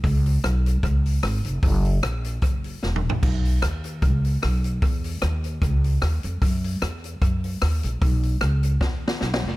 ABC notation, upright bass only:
X:1
M:4/4
L:1/8
Q:"Swing" 1/4=150
K:B
V:1 name="Upright bass" clef=bass
C,,2 B,,,2 C,,2 G,,, ^E,,, | F,,,2 A,,,2 F,,,2 E,,, A,,, | B,,,2 D,,2 C,,2 B,,,2 | E,,2 D,,2 C,,2 D,, ^E,, |
F,,2 E,,2 F,,2 D,, A,,, | B,,,2 C,,2 z2 B,,, ^E,,, |]